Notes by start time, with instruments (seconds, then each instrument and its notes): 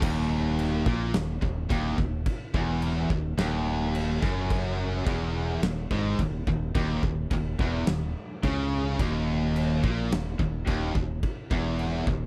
0.02 fingered electric bass D#1, distorted electric guitar D#2, kick, crash
0.59 crash
0.86 fingered electric bass A#1, distorted electric guitar A#2, kick
1.14 fingered electric bass D#1, distorted electric guitar D#2, snare, crash
1.42 fingered electric bass D#1, distorted electric guitar D#2, kick
1.70 fingered electric bass D#1, distorted electric guitar D#2, kick, crash
1.98 fingered electric bass D#1, distorted electric guitar D#2, kick
2.26 kick, crash
2.54 fingered electric bass E1, distorted electric guitar E2, kick
2.82 crash
3.10 fingered electric bass D#1, distorted electric guitar D#2, kick
3.38 fingered electric bass D#1, distorted electric guitar D#2, snare, crash
3.95 crash
4.22 fingered electric bass F#1, distorted electric guitar F#2, kick, snare
4.50 kick, crash
5.06 fingered electric bass E1, distorted electric guitar E2, kick, crash
5.63 fingered electric bass D#1, distorted electric guitar D#2, snare, crash
5.91 fingered electric bass G#1, distorted electric guitar G#2, kick
6.19 fingered electric bass D#1, distorted electric guitar D#2, kick, crash
6.47 fingered electric bass D#1, distorted electric guitar D#2, kick
6.75 fingered electric bass D#1, distorted electric guitar D#2, kick, crash
7.03 fingered electric bass D#1, distorted electric guitar D#2, kick
7.31 fingered electric bass D#1, distorted electric guitar D#2, kick, crash
7.59 fingered electric bass E1, distorted electric guitar E2, kick
7.87 fingered electric bass D#1, distorted electric guitar D#2, snare, crash
8.43 fingered electric bass C#2, distorted electric guitar C#3, kick, crash
8.99 fingered electric bass D#1, distorted electric guitar D#2, kick, crash
9.56 crash
9.84 fingered electric bass A#1, distorted electric guitar A#2, kick
10.11 fingered electric bass D#1, distorted electric guitar D#2, snare, crash
10.39 fingered electric bass D#1, distorted electric guitar D#2, kick
10.67 fingered electric bass D#1, distorted electric guitar D#2, kick, crash
10.95 fingered electric bass D#1, distorted electric guitar D#2, kick
11.23 kick, crash
11.51 fingered electric bass E1, distorted electric guitar E2, kick
11.79 crash
12.07 fingered electric bass D#1, distorted electric guitar D#2, kick